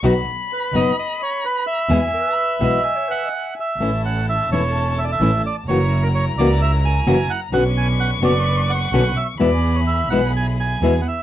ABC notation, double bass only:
X:1
M:4/4
L:1/8
Q:1/4=128
K:E
V:1 name="Double bass" clef=bass
B,,, z2 F,,, z4 | E,, z2 B,,, z4 | [K:A] A,,,3 E,,,3 A,,, z | F,,,3 C,,3 F,,, z |
B,,,3 F,,,3 B,,, z | E,,3 B,,,3 E,, z |]